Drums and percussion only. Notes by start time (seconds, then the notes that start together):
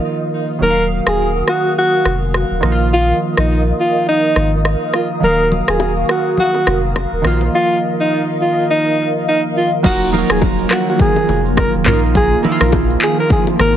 1.07 cross-stick
1.48 cross-stick
2.05 cross-stick
2.34 cross-stick
2.63 cross-stick
3.37 cross-stick
4.36 cross-stick
4.65 cross-stick
4.94 cross-stick
5.23 low conga
5.52 low conga
5.68 cross-stick
5.80 high bongo
6.09 cross-stick
6.37 low conga
6.54 high bongo
6.67 cross-stick, low bongo
6.96 cross-stick, high bongo, low bongo
7.25 cross-stick
7.41 low bongo
9.84 kick, crash, low conga, shaker
10.01 shaker
10.14 low conga
10.30 cross-stick, shaker
10.41 kick, high bongo, shaker
10.59 shaker
10.71 cross-stick, clap, open hi-hat, shaker
10.88 shaker
10.99 kick, low conga, shaker
11.16 high bongo, shaker
11.29 low bongo, shaker
11.46 shaker
11.57 kick, cross-stick, high bongo, low bongo, shaker
11.74 shaker
11.86 cross-stick, clap, mid tom, open hi-hat, high bongo
12.03 shaker
12.15 kick, low conga, shaker
12.32 shaker
12.45 low conga
12.61 cross-stick, shaker
12.72 kick, high bongo, shaker
12.90 shaker
13.02 clap, open hi-hat, shaker
13.19 shaker
13.30 kick, low conga, shaker
13.47 high bongo, shaker
13.59 cross-stick, low bongo, shaker